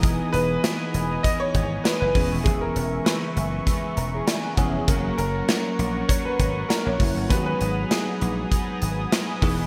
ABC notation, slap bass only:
X:1
M:4/4
L:1/16
Q:"Swing 16ths" 1/4=99
K:G#m
V:1 name="Slap bass" clef=bass
E,,,2 E,,,2 z2 E,,,2 z2 G,,,2 z F,,, E,,, D,,, | E,,,2 E,,,2 z2 F,,,2 z2 E,,,2 z2 ^E,,,2 | F,,,2 F,,,2 z2 A,,,2 z2 G,,,2 z A,,, F,,, =G,,, | G,,,2 G,,,2 z2 A,,,2 z2 G,,,2 z2 E,,,2 |]